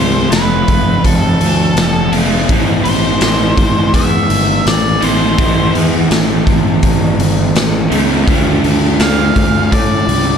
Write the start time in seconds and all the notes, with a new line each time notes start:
Already playing: C2 F3 A3 C4 F4 C5
0.32 F1 B4, snare, open hi-hat
0.68 F1, kick, open hi-hat
1.05 F1 A4, kick, open hi-hat
1.41 D2, open hi-hat
1.76 F1, snare, open hi-hat
2.12 F1 F3 A3 C4 F4, open hi-hat
2.48 A1 A2 E3 A3 C4 E4, kick, open hi-hat
2.84 A1 C5, open hi-hat
3.21 A1, snare, open hi-hat
3.57 A1, kick, open hi-hat
3.94 E2 E5, kick, open hi-hat
4.29 G1, open hi-hat
4.66 A1 D5, snare, open hi-hat
5.01 A1 A2 E3 A3 C4 E4 C5, open hi-hat
5.36 A1 A2 E3 A3 C4 E4, kick, open hi-hat
5.75 E2, open hi-hat
6.11 A1, snare, open hi-hat
6.47 A1, kick, open hi-hat
6.83 A1, kick, open hi-hat
7.19 G1, open hi-hat
7.55 A1, snare, open hi-hat
7.90 C#2 A2 E3 A3 C4 E4, open hi-hat
8.26 D2 D3 A3 D4 F4, kick, open hi-hat
8.64 D2, open hi-hat
8.99 D2 F5, snare, open hi-hat
9.36 D2, kick, open hi-hat
9.72 A2 D5, kick, open hi-hat
10.07 C2, open hi-hat